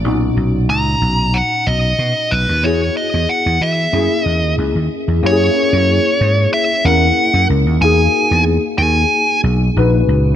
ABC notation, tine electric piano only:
X:1
M:4/4
L:1/8
Q:"Swing 16ths" 1/4=92
K:B
V:1 name="Tine electric piano"
[A,,CDF]8 | [B,EFG]4 [=A,^A,CEG]4 | [A,CE=G^G]4- [A,CE=G^G] [A,CEA]3 | [A,DFG]6 [A,,DFB]2 |]